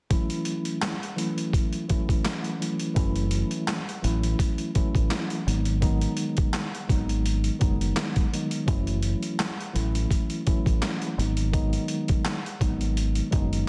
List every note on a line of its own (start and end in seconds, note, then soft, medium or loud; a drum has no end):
0.10 0.94 E3 medium
0.10 0.94 F#3 medium
0.10 0.94 A3 medium
0.10 0.94 C#4 medium
0.10 0.95 E4 loud
0.10 kick loud
0.10 closed hi-hat medium
0.30 closed hi-hat medium
0.45 closed hi-hat medium
0.65 closed hi-hat medium
0.82 snare loud
0.82 clap medium
0.82 closed hi-hat medium
1.03 closed hi-hat soft
1.16 1.83 E3 medium
1.16 1.84 F#3 medium
1.16 1.84 A3 medium
1.16 1.84 C#4 medium
1.16 1.84 E4 loud
1.16 closed hi-hat medium
1.38 closed hi-hat medium
1.53 kick medium
1.53 closed hi-hat medium
1.73 closed hi-hat soft
1.89 2.55 E3 medium
1.89 2.56 F#3 medium
1.89 2.56 A3 medium
1.89 2.56 C#4 medium
1.89 2.56 E4 loud
1.89 kick medium
1.89 closed hi-hat medium
2.09 kick medium
2.09 closed hi-hat medium
2.25 snare loud
2.25 clap medium
2.25 closed hi-hat medium
2.44 closed hi-hat medium
2.59 2.93 E3 medium
2.59 2.93 F#3 medium
2.59 2.93 A3 medium
2.59 2.94 C#4 medium
2.59 2.94 E4 medium
2.59 closed hi-hat medium
2.80 closed hi-hat medium
2.94 3.42 F#1 loud
2.94 3.78 E3 medium
2.94 3.79 F#3 medium
2.94 3.79 A3 medium
2.94 3.79 C#4 medium
2.94 3.79 E4 loud
2.94 kick loud
2.94 closed hi-hat medium
3.16 closed hi-hat medium
3.31 closed hi-hat medium
3.51 closed hi-hat medium
3.68 snare loud
3.68 clap loud
3.68 closed hi-hat medium
3.89 closed hi-hat soft
4.02 4.33 A1 medium
4.02 4.69 E3 medium
4.02 4.69 F#3 medium
4.02 4.70 A3 medium
4.02 4.70 C#4 medium
4.02 4.70 E4 loud
4.02 closed hi-hat medium
4.23 closed hi-hat medium
4.39 kick medium
4.39 closed hi-hat medium
4.58 closed hi-hat soft
4.74 5.41 E3 medium
4.74 5.41 F#3 medium
4.74 5.42 A3 medium
4.74 5.42 C#4 medium
4.74 5.42 E4 loud
4.74 kick medium
4.74 closed hi-hat medium
4.95 5.08 A1 medium
4.95 kick loud
4.95 closed hi-hat medium
5.11 snare loud
5.11 clap medium
5.11 closed hi-hat medium
5.30 closed hi-hat medium
5.46 6.05 G#1 loud
5.46 5.80 D#3 medium
5.46 5.80 F#3 medium
5.46 5.80 G#3 medium
5.46 5.80 B3 medium
5.46 5.81 D#4 medium
5.46 closed hi-hat medium
5.65 closed hi-hat medium
5.81 6.65 D#3 medium
5.81 6.65 F#3 medium
5.81 6.65 G#3 medium
5.81 6.65 B3 medium
5.81 6.66 D#4 loud
5.81 kick loud
5.81 closed hi-hat medium
6.01 closed hi-hat medium
6.17 closed hi-hat medium
6.37 kick medium
6.37 closed hi-hat medium
6.54 snare loud
6.54 clap medium
6.54 closed hi-hat medium
6.75 closed hi-hat soft
6.88 7.48 G#1 medium
6.88 7.55 D#3 medium
6.88 7.55 F#3 medium
6.88 7.55 G#3 medium
6.88 7.56 B3 medium
6.88 7.56 D#4 loud
6.88 kick medium
6.88 closed hi-hat medium
7.09 closed hi-hat medium
7.26 closed hi-hat medium
7.44 closed hi-hat soft
7.59 7.91 F#1 medium
7.59 8.26 D#3 medium
7.59 8.26 F#3 medium
7.59 8.27 G#3 medium
7.59 8.27 B3 medium
7.59 8.27 D#4 loud
7.59 kick medium
7.59 closed hi-hat medium
7.81 closed hi-hat medium
7.96 snare loud
7.96 clap medium
7.96 closed hi-hat medium
8.16 kick medium
8.16 closed hi-hat medium
8.32 8.65 D#3 medium
8.32 8.65 F#3 medium
8.32 8.66 G#3 medium
8.32 8.66 B3 medium
8.32 8.67 D#4 medium
8.32 closed hi-hat medium
8.51 closed hi-hat medium
8.65 9.14 F#1 loud
8.65 9.50 E3 medium
8.65 9.50 F#3 medium
8.65 9.50 A3 medium
8.65 9.51 C#4 medium
8.65 9.51 E4 loud
8.65 kick loud
8.65 closed hi-hat medium
8.87 closed hi-hat medium
9.02 closed hi-hat medium
9.23 closed hi-hat medium
9.39 snare loud
9.39 clap loud
9.39 closed hi-hat medium
9.61 closed hi-hat soft
9.73 10.05 A1 medium
9.73 10.40 E3 medium
9.73 10.41 F#3 medium
9.73 10.41 A3 medium
9.73 10.41 C#4 medium
9.73 10.42 E4 loud
9.73 closed hi-hat medium
9.95 closed hi-hat medium
10.11 kick medium
10.11 closed hi-hat medium
10.30 closed hi-hat soft
10.46 11.12 E3 medium
10.46 11.13 F#3 medium
10.46 11.13 A3 medium
10.46 11.13 C#4 medium
10.46 11.13 E4 loud
10.46 kick medium
10.46 closed hi-hat medium
10.66 10.79 A1 medium
10.66 kick loud
10.66 closed hi-hat medium
10.82 snare loud
10.82 clap medium
10.82 closed hi-hat loud
11.02 closed hi-hat soft
11.18 11.77 G#1 loud
11.18 11.51 D#3 medium
11.18 11.51 F#3 medium
11.18 11.52 G#3 medium
11.18 11.52 B3 medium
11.18 11.52 D#4 medium
11.18 closed hi-hat medium
11.37 closed hi-hat medium
11.52 12.36 D#3 medium
11.52 12.36 F#3 medium
11.52 12.37 G#3 medium
11.52 12.37 B3 medium
11.52 12.37 D#4 loud
11.52 kick loud
11.52 closed hi-hat medium
11.73 closed hi-hat medium
11.88 closed hi-hat medium
12.08 kick medium
12.08 closed hi-hat medium
12.25 snare loud
12.25 clap medium
12.25 closed hi-hat medium
12.46 closed hi-hat soft
12.59 13.20 G#1 medium
12.59 13.26 D#3 medium
12.59 13.27 F#3 medium
12.59 13.27 G#3 medium
12.59 13.27 B3 medium
12.59 13.27 D#4 loud
12.59 kick medium
12.59 closed hi-hat medium
12.81 closed hi-hat medium
12.97 closed hi-hat medium
13.15 closed hi-hat soft
13.30 13.62 F#1 medium
13.30 13.69 D#3 medium
13.30 13.69 F#3 medium
13.30 13.69 G#3 medium
13.30 13.69 B3 medium
13.30 13.69 D#4 loud
13.30 kick medium
13.30 closed hi-hat medium
13.53 closed hi-hat medium